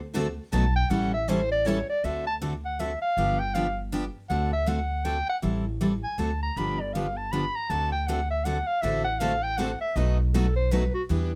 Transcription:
Already playing: upright bass D2
0.15 steel-string acoustic guitar D3 A3 C4 F#4 A4
0.53 upright bass B1, steel-string acoustic guitar B2 F#3 A3 D#4 F#4 B4, clarinet A5
0.76 clarinet G5
0.90 upright bass A1, steel-string acoustic guitar E3 G3 C#4 E4 A4, clarinet F#5
1.14 clarinet E5
1.29 steel-string acoustic guitar E3 G3 C#4 E4 A4, clarinet C5
1.52 clarinet D5
1.66 steel-string acoustic guitar E3 G3 C#4 E4 A4, clarinet C#5
1.90 clarinet D5
2.04 upright bass D2, steel-string acoustic guitar D3 A3 C4 F#4 A4, clarinet E5
2.27 clarinet A5
2.42 steel-string acoustic guitar D3 A3 C4 F#4 A4
2.65 clarinet F#5
2.79 steel-string acoustic guitar D3 A3 C4 F#4 A4, clarinet E5
3.02 clarinet F5
3.17 upright bass G1, steel-string acoustic guitar D3 F3 B3 D4 G4
3.39 clarinet G5
3.54 steel-string acoustic guitar D3 F3 B3 D4 G4, clarinet F5
3.92 steel-string acoustic guitar D3 F3 B3 D4 G4
4.30 upright bass D2, steel-string acoustic guitar D3 A3 C4 F#4 A4, clarinet F#5
4.53 clarinet E5
4.66 steel-string acoustic guitar D3 A3 C4 F#4 A4, clarinet F#5
5.05 steel-string acoustic guitar D3 A3 C4 F#4 A4, clarinet G5
5.29 clarinet F#5
5.42 upright bass A1, steel-string acoustic guitar E3 G3 C4 E4 A4
5.81 steel-string acoustic guitar E3 G3 C4 E4 A4
6.04 clarinet G#5
6.18 upright bass D2, steel-string acoustic guitar D3 A3 C4 F#4 A4, clarinet A5
6.43 clarinet A#5
6.56 upright bass G1, steel-string acoustic guitar D3 F3 B3 D4 G4, clarinet B5
6.81 clarinet D5
6.94 steel-string acoustic guitar D3 F3 B3 D4 G4, clarinet F5
7.17 clarinet A5
7.32 steel-string acoustic guitar D3 F3 B3 D4 G4, clarinet B5
7.56 clarinet A#5
7.70 upright bass D2, steel-string acoustic guitar D3 A3 C4 F#4 A4, clarinet A5
7.92 clarinet G5
8.07 steel-string acoustic guitar D3 A3 C4 F#4 A4, clarinet F#5
8.30 clarinet E5
8.45 steel-string acoustic guitar D3 A3 C4 F#4 A4, clarinet F#5
8.67 clarinet F5
8.81 upright bass A1, steel-string acoustic guitar D3 A3 C4 F#4 A4, clarinet E5
9.04 clarinet F#5
9.20 steel-string acoustic guitar D3 A3 C4 F#4 A4, clarinet F5
9.43 clarinet G5
9.57 steel-string acoustic guitar D3 A3 C4 F#4 A4, clarinet F#5
9.81 clarinet E5
9.96 upright bass B1, steel-string acoustic guitar B2 F#3 A3 D#4 F#4 B4, clarinet D#5
10.20 clarinet F#4
10.33 steel-string acoustic guitar B2 F#3 A3 D#4 F#4 B4, clarinet A4
10.56 clarinet C5
10.71 steel-string acoustic guitar B2 F#3 A3 D#4 F#4 B4, clarinet B4
10.94 clarinet F#4
11.09 upright bass E2, steel-string acoustic guitar E3 G3 B3 D4 E4 G4 B4

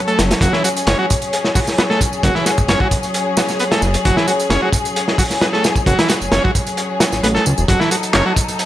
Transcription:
Already playing: string section F#3 C#4 A4
0.08 transistor combo organ A3, closed hi-hat
0.19 analog synth bass F#1, snare, closed hi-hat, tambourine
0.31 snare, closed hi-hat, tambourine
0.41 analog synth bass F#1, transistor combo organ F#3, string section G#4, kick, closed hi-hat, tambourine
0.53 transistor combo organ E3, snare
0.64 transistor combo organ F#3, closed hi-hat, tambourine
0.77 closed hi-hat, tambourine
0.87 analog synth bass F#1, transistor combo organ C#4, snare, closed hi-hat, tambourine
0.99 transistor combo organ F#3
1.10 kick, closed hi-hat, tambourine
1.22 closed hi-hat, tambourine
1.33 closed hi-hat, tambourine
1.44 snare
1.55 transistor combo organ F#3, kick, open hi-hat, tambourine
1.67 snare, tambourine
1.78 transistor combo organ B3, snare, closed hi-hat, tambourine
1.90 transistor combo organ A3, snare
2.01 kick, closed hi-hat, tambourine
2.13 tambourine
2.23 analog synth bass F#1, transistor combo organ F#3, kick, closed hi-hat, tambourine
2.35 transistor combo organ E3, snare
2.46 transistor combo organ F#3, snare, closed hi-hat, tambourine
2.58 analog synth bass F#1, kick, tambourine
2.68 analog synth bass F#1, transistor combo organ C#4, snare, closed hi-hat, tambourine
2.80 transistor combo organ F#3, kick
2.91 kick, closed hi-hat, tambourine
3.03 closed hi-hat, tambourine
3.14 closed hi-hat, tambourine
3.37 transistor combo organ F#3, snare, closed hi-hat, tambourine
3.48 snare, tambourine
3.59 transistor combo organ B3, closed hi-hat, tambourine
3.71 transistor combo organ A3, snare, closed hi-hat
3.82 analog synth bass F#1, snare, tambourine
3.94 closed hi-hat, tambourine
4.05 analog synth bass F#1, transistor combo organ F#3, kick, closed hi-hat, tambourine
4.17 transistor combo organ E3, snare
4.27 transistor combo organ F#3, closed hi-hat, tambourine
4.40 closed hi-hat, tambourine
4.50 analog synth bass F#1, transistor combo organ C#4, snare, closed hi-hat, tambourine
4.62 transistor combo organ F#3
4.73 kick, closed hi-hat, tambourine
4.85 closed hi-hat, tambourine
4.96 closed hi-hat, tambourine
5.08 snare
5.18 transistor combo organ F#3, kick, open hi-hat, tambourine
5.31 snare, tambourine
5.41 transistor combo organ B3, snare, closed hi-hat, tambourine
5.53 transistor combo organ A3, snare
5.64 snare, closed hi-hat, tambourine
5.76 kick, tambourine
5.86 analog synth bass F#1, transistor combo organ F#3, kick, closed hi-hat, tambourine
5.98 transistor combo organ E3, snare, closed hi-hat
6.09 transistor combo organ F#3, snare, closed hi-hat, tambourine
6.21 analog synth bass F#1, tambourine
6.31 analog synth bass F#1, transistor combo organ C#4, snare, closed hi-hat, tambourine
6.44 transistor combo organ F#3, kick
6.55 kick, closed hi-hat, tambourine
6.67 closed hi-hat, tambourine
6.77 closed hi-hat, tambourine
7.00 transistor combo organ F#3, snare, closed hi-hat, tambourine
7.12 analog synth bass A1, snare, tambourine
7.23 analog synth bass A1, transistor combo organ B3, closed hi-hat, tambourine
7.35 transistor combo organ A3, snare
7.46 analog synth bass C#2, tambourine
7.58 analog synth bass E1, tambourine
7.68 analog synth bass F#1, transistor combo organ F#3, string section D#4 A4, kick, closed hi-hat, tambourine
7.80 transistor combo organ E3, snare
7.91 transistor combo organ F#3, closed hi-hat, tambourine
8.03 closed hi-hat, tambourine
8.13 analog synth bass F#1, transistor combo organ C#4, snare, clap, closed hi-hat, tambourine
8.26 transistor combo organ F#3
8.36 kick, closed hi-hat, tambourine
8.48 closed hi-hat, tambourine
8.59 closed hi-hat, tambourine

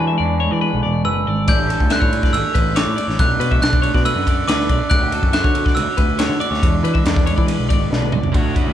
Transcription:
Already playing: clean electric guitar E2 D3 B3 D4, glockenspiel G#5
0.00 picked electric bass E3
0.07 clean electric guitar G#3 E5
0.18 picked electric bass E2, clean electric guitar E3 D4 D5
0.40 clean electric guitar G#3 C#5
0.51 picked electric bass E3, clean electric guitar D5
0.61 clean electric guitar B3 B4
0.73 picked electric bass B1
0.83 picked electric bass E1, clean electric guitar B2 D5
1.05 picked electric bass F#1, clean electric guitar F#2 B4, glockenspiel E6
1.27 picked electric bass G#1, clean electric guitar G#2 D5
1.48 picked electric bass A1, clean electric guitar A2 G3 A3 D4 D5, glockenspiel G6, kick, ride
1.59 clean electric guitar G4
1.70 clean electric guitar G3 A4, ride
1.80 picked electric bass D2, kick
1.90 clean electric guitar D3 D4 E5, glockenspiel F#6, snare, ride
2.00 picked electric bass A2, clean electric guitar C#5, kick
2.12 clean electric guitar G3, ride
2.23 clean electric guitar D5, kick, snare
2.33 picked electric bass A1, clean electric guitar A3, glockenspiel E6, ride
2.44 clean electric guitar C#5
2.54 picked electric bass A1, clean electric guitar E2 B4, kick, ride
2.75 clean electric guitar G2 C#5, glockenspiel D6, snare, ride
2.87 picked electric bass A2
2.96 clean electric guitar A2 D5, ride
3.07 picked electric bass A1, clean electric guitar C#5, snare
3.19 picked electric bass B1, clean electric guitar B2 A3 B3 D4, glockenspiel F#6, kick, ride
3.39 picked electric bass B2, clean electric guitar F#3 B4, ride
3.51 clean electric guitar A3 E5, kick
3.61 picked electric bass B1, clean electric guitar D3 D4 D5, glockenspiel F#6, snare, ride
3.73 kick
3.82 clean electric guitar A3 C#5, ride
3.94 picked electric bass B2, clean electric guitar D5, kick, snare
4.05 clean electric guitar A3 B4, glockenspiel E6, ride
4.15 picked electric bass F#2, clean electric guitar B3
4.26 clean electric guitar F#2 D5, kick, ride
4.48 picked electric bass D2, clean electric guitar D4 B4, glockenspiel D6, snare, ride
4.60 snare
4.69 picked electric bass B1, clean electric guitar A3 D5, kick, ride
4.80 clean electric guitar B3
4.90 clean electric guitar D2 F#3 B3 F#4 D5, picked electric bass D2, glockenspiel F#6, kick, ride
5.02 clean electric guitar G4
5.11 clean electric guitar F#3 A4, ride
5.23 picked electric bass F#2, kick
5.33 clean electric guitar D3 F#4 E5, glockenspiel F#6, snare, ride
5.44 picked electric bass D3, clean electric guitar C#5, kick
5.55 clean electric guitar F#3, ride
5.65 clean electric guitar D5, kick, snare
5.75 picked electric bass D2, clean electric guitar B3, glockenspiel E6, ride
5.86 clean electric guitar C#5
5.97 picked electric bass D2, clean electric guitar A2 B4, kick, ride
6.19 clean electric guitar F#4 C#5, snare, ride
6.29 picked electric bass D3, snare
6.40 clean electric guitar B3 D5, glockenspiel D6, ride
6.51 picked electric bass D2, clean electric guitar C#5, snare
6.63 picked electric bass E2, clean electric guitar E2 G#3 B3 D4, kick, ride
6.83 picked electric bass E3, clean electric guitar F#3 B4, ride
6.94 clean electric guitar G#3 E5, kick
7.05 picked electric bass E2, clean electric guitar E3 D4 D5, snare, ride
7.16 kick, snare
7.26 clean electric guitar G#3 C#5, ride
7.37 picked electric bass E3, clean electric guitar D5, kick
7.47 clean electric guitar B3 B4, ride
7.59 picked electric bass B1
7.69 picked electric bass G#1, clean electric guitar B2 D5, kick, ride
7.91 picked electric bass B1, clean electric guitar D4 B4, snare
8.02 mid tom
8.12 picked electric bass C#2, clean electric guitar B3 D5, mid tom
8.23 floor tom
8.33 clean electric guitar D2 F#3 B3 F#4 C#5, picked electric bass D2, overdriven electric guitar D3 A3 D4 F#4, kick, ride
8.54 overdriven electric guitar A3 D4 F#4, clean electric guitar E4 B4, kick, ride
8.67 picked electric bass D2

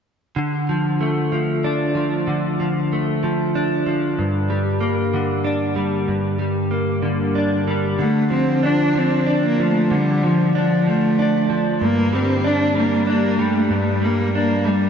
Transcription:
0.36 clean electric guitar D3
0.69 clean electric guitar F3
1.01 clean electric guitar A3
1.32 clean electric guitar F3
1.64 clean electric guitar D4
1.95 clean electric guitar F3
2.27 clean electric guitar D3
2.60 clean electric guitar F3
2.93 clean electric guitar A3
3.23 clean electric guitar F3
3.55 clean electric guitar D4
3.87 clean electric guitar F3
4.18 clean electric guitar G2
4.50 clean electric guitar G3
4.81 clean electric guitar A#3
5.14 clean electric guitar D3
5.44 clean electric guitar D4
5.76 clean electric guitar G3
6.08 clean electric guitar G2
6.39 clean electric guitar G3
6.71 clean electric guitar A#3
7.03 clean electric guitar D3
7.35 clean electric guitar D4
7.68 clean electric guitar G3
7.99 clean electric guitar D3, cello A3
8.30 clean electric guitar F3, cello C4
8.63 clean electric guitar D4, cello D4
8.95 clean electric guitar F3, cello C4
9.27 clean electric guitar D4
9.46 cello A#3
9.60 clean electric guitar F3, cello A3
9.91 clean electric guitar D3, cello G3
10.23 clean electric guitar F3, cello F3
10.55 cello F3, clean electric guitar D4
10.87 clean electric guitar F3, cello A3
11.19 clean electric guitar D4
11.50 clean electric guitar F3
11.81 clean electric guitar G2, cello A#3
12.13 clean electric guitar G3, cello C4
12.44 clean electric guitar D4, cello D4
12.75 clean electric guitar G3, cello A#3
13.07 cello A#3, clean electric guitar D4
13.39 clean electric guitar G3, cello A3
13.70 clean electric guitar G2, cello G3
14.02 clean electric guitar G3, cello A#3
14.35 cello A#3, clean electric guitar D4
14.65 clean electric guitar G3, cello G3

